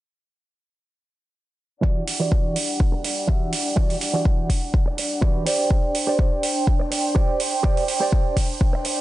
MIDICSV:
0, 0, Header, 1, 5, 480
1, 0, Start_track
1, 0, Key_signature, 1, "minor"
1, 0, Tempo, 483871
1, 1821, Time_signature, 4, 2, 24, 8
1, 8937, End_track
2, 0, Start_track
2, 0, Title_t, "Violin section"
2, 0, Program_c, 0, 48
2, 1817, Note_on_c, 0, 78, 80
2, 1818, Note_on_c, 0, 55, 65
2, 5383, Note_off_c, 0, 78, 0
2, 5384, Note_off_c, 0, 55, 0
2, 5423, Note_on_c, 0, 72, 71
2, 5424, Note_on_c, 0, 79, 92
2, 8937, Note_off_c, 0, 72, 0
2, 8937, Note_off_c, 0, 79, 0
2, 8937, End_track
3, 0, Start_track
3, 0, Title_t, "Clean electric guitar"
3, 0, Program_c, 1, 27
3, 1807, Note_on_c, 1, 52, 107
3, 1814, Note_on_c, 1, 66, 100
3, 1820, Note_on_c, 1, 67, 96
3, 1826, Note_on_c, 1, 74, 112
3, 1999, Note_off_c, 1, 52, 0
3, 2002, Note_off_c, 1, 66, 0
3, 2005, Note_off_c, 1, 67, 0
3, 2008, Note_off_c, 1, 74, 0
3, 2179, Note_on_c, 1, 52, 79
3, 2184, Note_on_c, 1, 66, 77
3, 2190, Note_on_c, 1, 67, 75
3, 2196, Note_on_c, 1, 74, 87
3, 2535, Note_off_c, 1, 52, 0
3, 2538, Note_off_c, 1, 66, 0
3, 2541, Note_off_c, 1, 67, 0
3, 2544, Note_off_c, 1, 74, 0
3, 3248, Note_on_c, 1, 52, 81
3, 3255, Note_on_c, 1, 66, 72
3, 3260, Note_on_c, 1, 67, 75
3, 3267, Note_on_c, 1, 76, 86
3, 3495, Note_off_c, 1, 52, 0
3, 3498, Note_off_c, 1, 66, 0
3, 3500, Note_off_c, 1, 67, 0
3, 3504, Note_off_c, 1, 76, 0
3, 3730, Note_on_c, 1, 52, 106
3, 3735, Note_on_c, 1, 66, 97
3, 3741, Note_on_c, 1, 67, 103
3, 3747, Note_on_c, 1, 74, 124
3, 3920, Note_off_c, 1, 52, 0
3, 3923, Note_off_c, 1, 66, 0
3, 3926, Note_off_c, 1, 67, 0
3, 3929, Note_off_c, 1, 74, 0
3, 4101, Note_on_c, 1, 52, 81
3, 4106, Note_on_c, 1, 66, 73
3, 4113, Note_on_c, 1, 67, 76
3, 4119, Note_on_c, 1, 74, 86
3, 4456, Note_off_c, 1, 52, 0
3, 4459, Note_off_c, 1, 66, 0
3, 4462, Note_off_c, 1, 67, 0
3, 4465, Note_off_c, 1, 74, 0
3, 5172, Note_on_c, 1, 52, 77
3, 5178, Note_on_c, 1, 66, 76
3, 5184, Note_on_c, 1, 67, 78
3, 5190, Note_on_c, 1, 74, 86
3, 5401, Note_off_c, 1, 67, 0
3, 5409, Note_off_c, 1, 66, 0
3, 5413, Note_on_c, 1, 67, 83
3, 5417, Note_off_c, 1, 52, 0
3, 5417, Note_off_c, 1, 74, 0
3, 5422, Note_on_c, 1, 72, 78
3, 5429, Note_on_c, 1, 74, 87
3, 5897, Note_off_c, 1, 67, 0
3, 5901, Note_off_c, 1, 72, 0
3, 5905, Note_off_c, 1, 74, 0
3, 6022, Note_on_c, 1, 67, 85
3, 6031, Note_on_c, 1, 72, 74
3, 6039, Note_on_c, 1, 74, 91
3, 6377, Note_off_c, 1, 67, 0
3, 6381, Note_off_c, 1, 72, 0
3, 6385, Note_off_c, 1, 74, 0
3, 7090, Note_on_c, 1, 67, 81
3, 7098, Note_on_c, 1, 72, 73
3, 7108, Note_on_c, 1, 74, 85
3, 7336, Note_off_c, 1, 67, 0
3, 7340, Note_off_c, 1, 72, 0
3, 7345, Note_off_c, 1, 74, 0
3, 7571, Note_on_c, 1, 67, 103
3, 7579, Note_on_c, 1, 72, 95
3, 7588, Note_on_c, 1, 74, 122
3, 7761, Note_off_c, 1, 67, 0
3, 7765, Note_off_c, 1, 72, 0
3, 7769, Note_off_c, 1, 74, 0
3, 7942, Note_on_c, 1, 67, 86
3, 7951, Note_on_c, 1, 72, 75
3, 7960, Note_on_c, 1, 74, 91
3, 8297, Note_off_c, 1, 67, 0
3, 8301, Note_off_c, 1, 72, 0
3, 8306, Note_off_c, 1, 74, 0
3, 8937, End_track
4, 0, Start_track
4, 0, Title_t, "Muted clean electric guitar strokes"
4, 2898, Note_on_c, 9, 29, 99
4, 2997, Note_off_c, 9, 29, 0
4, 3007, Note_on_c, 9, 29, 32
4, 3106, Note_off_c, 9, 29, 0
4, 4819, Note_on_c, 9, 29, 110
4, 4918, Note_off_c, 9, 29, 0
4, 4932, Note_on_c, 9, 29, 31
4, 5031, Note_off_c, 9, 29, 0
4, 6741, Note_on_c, 9, 29, 102
4, 6840, Note_off_c, 9, 29, 0
4, 6851, Note_on_c, 9, 29, 32
4, 6950, Note_off_c, 9, 29, 0
4, 8662, Note_on_c, 9, 29, 105
4, 8761, Note_off_c, 9, 29, 0
4, 8771, Note_on_c, 9, 29, 33
4, 8870, Note_off_c, 9, 29, 0
4, 8937, End_track
5, 0, Start_track
5, 0, Title_t, "Drums"
5, 1819, Note_on_c, 9, 36, 108
5, 1918, Note_off_c, 9, 36, 0
5, 2059, Note_on_c, 9, 46, 93
5, 2158, Note_off_c, 9, 46, 0
5, 2299, Note_on_c, 9, 36, 111
5, 2398, Note_off_c, 9, 36, 0
5, 2540, Note_on_c, 9, 46, 103
5, 2639, Note_off_c, 9, 46, 0
5, 2779, Note_on_c, 9, 36, 114
5, 2878, Note_off_c, 9, 36, 0
5, 3020, Note_on_c, 9, 46, 95
5, 3119, Note_off_c, 9, 46, 0
5, 3259, Note_on_c, 9, 36, 113
5, 3358, Note_off_c, 9, 36, 0
5, 3499, Note_on_c, 9, 46, 97
5, 3598, Note_off_c, 9, 46, 0
5, 3739, Note_on_c, 9, 36, 106
5, 3839, Note_off_c, 9, 36, 0
5, 3870, Note_on_c, 9, 46, 57
5, 3969, Note_off_c, 9, 46, 0
5, 3981, Note_on_c, 9, 46, 95
5, 4080, Note_off_c, 9, 46, 0
5, 4220, Note_on_c, 9, 36, 119
5, 4319, Note_off_c, 9, 36, 0
5, 4461, Note_on_c, 9, 36, 59
5, 4463, Note_on_c, 9, 46, 109
5, 4560, Note_off_c, 9, 36, 0
5, 4562, Note_off_c, 9, 46, 0
5, 4701, Note_on_c, 9, 36, 120
5, 4800, Note_off_c, 9, 36, 0
5, 4941, Note_on_c, 9, 46, 97
5, 5040, Note_off_c, 9, 46, 0
5, 5180, Note_on_c, 9, 36, 112
5, 5280, Note_off_c, 9, 36, 0
5, 5421, Note_on_c, 9, 46, 108
5, 5521, Note_off_c, 9, 46, 0
5, 5660, Note_on_c, 9, 36, 117
5, 5760, Note_off_c, 9, 36, 0
5, 5901, Note_on_c, 9, 46, 101
5, 6000, Note_off_c, 9, 46, 0
5, 6140, Note_on_c, 9, 36, 122
5, 6240, Note_off_c, 9, 36, 0
5, 6381, Note_on_c, 9, 46, 108
5, 6480, Note_off_c, 9, 46, 0
5, 6620, Note_on_c, 9, 36, 117
5, 6719, Note_off_c, 9, 36, 0
5, 6862, Note_on_c, 9, 46, 91
5, 6961, Note_off_c, 9, 46, 0
5, 7100, Note_on_c, 9, 36, 121
5, 7199, Note_off_c, 9, 36, 0
5, 7340, Note_on_c, 9, 46, 102
5, 7440, Note_off_c, 9, 46, 0
5, 7580, Note_on_c, 9, 36, 107
5, 7679, Note_off_c, 9, 36, 0
5, 7711, Note_on_c, 9, 46, 60
5, 7810, Note_off_c, 9, 46, 0
5, 7820, Note_on_c, 9, 46, 97
5, 7920, Note_off_c, 9, 46, 0
5, 8060, Note_on_c, 9, 36, 119
5, 8160, Note_off_c, 9, 36, 0
5, 8300, Note_on_c, 9, 36, 61
5, 8300, Note_on_c, 9, 46, 105
5, 8399, Note_off_c, 9, 36, 0
5, 8399, Note_off_c, 9, 46, 0
5, 8540, Note_on_c, 9, 36, 116
5, 8640, Note_off_c, 9, 36, 0
5, 8778, Note_on_c, 9, 46, 95
5, 8877, Note_off_c, 9, 46, 0
5, 8937, End_track
0, 0, End_of_file